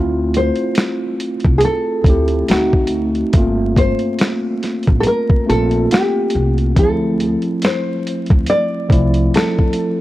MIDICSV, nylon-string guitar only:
0, 0, Header, 1, 2, 480
1, 0, Start_track
1, 0, Tempo, 857143
1, 1868, Time_signature, 4, 2, 24, 8
1, 5605, End_track
2, 0, Start_track
2, 0, Title_t, "Nylon-string guitar"
2, 0, Program_c, 0, 24
2, 205, Note_on_c, 0, 72, 97
2, 884, Note_off_c, 0, 72, 0
2, 886, Note_on_c, 0, 68, 73
2, 914, Note_off_c, 0, 68, 0
2, 922, Note_on_c, 0, 69, 99
2, 1406, Note_on_c, 0, 66, 69
2, 1409, Note_off_c, 0, 69, 0
2, 1754, Note_off_c, 0, 66, 0
2, 2118, Note_on_c, 0, 72, 79
2, 2800, Note_off_c, 0, 72, 0
2, 2803, Note_on_c, 0, 69, 73
2, 2832, Note_off_c, 0, 69, 0
2, 2838, Note_on_c, 0, 70, 92
2, 3075, Note_off_c, 0, 70, 0
2, 3077, Note_on_c, 0, 69, 86
2, 3296, Note_off_c, 0, 69, 0
2, 3317, Note_on_c, 0, 67, 77
2, 3669, Note_off_c, 0, 67, 0
2, 3803, Note_on_c, 0, 69, 89
2, 4281, Note_off_c, 0, 69, 0
2, 4283, Note_on_c, 0, 72, 90
2, 4756, Note_off_c, 0, 72, 0
2, 4759, Note_on_c, 0, 74, 120
2, 5237, Note_off_c, 0, 74, 0
2, 5239, Note_on_c, 0, 69, 93
2, 5590, Note_off_c, 0, 69, 0
2, 5605, End_track
0, 0, End_of_file